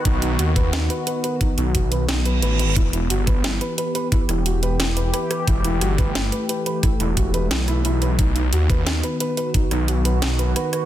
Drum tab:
HH |xxxxxxxx|xxxxxxxx|xxxxxxxx|xxxxxxxx|
SD |----o---|----o---|----o---|-r--o-rr|
BD |o--o----|o-o-----|o--o----|o-------|

HH |xxxxxxxx|xxxxxxxx|xxxxxxxx|xxxxxxxx|
SD |--r-o---|r---or--|----o---|-r--o-rr|
BD |o--o----|o-o-----|o--o----|o-------|